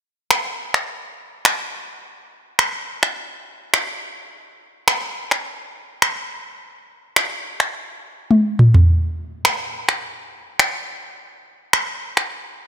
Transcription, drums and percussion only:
0.31 finger snap
0.74 finger snap
1.45 finger snap
2.59 finger snap
3.03 finger snap
3.74 finger snap
4.88 finger snap
5.31 finger snap
6.02 finger snap
7.16 finger snap
7.60 finger snap
8.31 high tom
8.59 mid tom
8.74 floor tom
9.45 finger snap
9.89 finger snap
10.59 finger snap
11.73 finger snap
12.17 finger snap

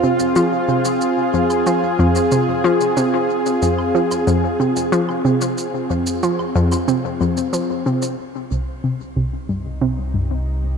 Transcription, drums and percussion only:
0.19 shaker
0.36 shaker
0.85 shaker
1.01 shaker
1.50 low woodblock, shaker
1.66 shaker
2.15 shaker
2.32 shaker
2.81 shaker
2.97 shaker
3.46 shaker
3.62 shaker
3.79 low woodblock
4.11 low woodblock, shaker
4.28 shaker
4.76 shaker
4.93 shaker
5.09 low woodblock
5.41 shaker
5.58 shaker
6.07 shaker
6.23 shaker
6.39 low woodblock
6.72 low woodblock, shaker
6.88 shaker
7.37 shaker
7.53 shaker
8.02 shaker

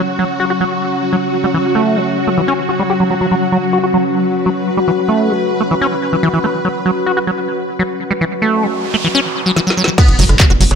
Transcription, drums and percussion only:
9.56 snare
9.70 snare
9.84 snare
9.98 kick, cross-stick, closed hi-hat, crash
10.08 closed hi-hat
10.19 open hi-hat
10.29 cross-stick, closed hi-hat
10.40 kick, clap, closed hi-hat
10.50 cross-stick, closed hi-hat
10.61 open hi-hat
10.71 cross-stick, closed hi-hat

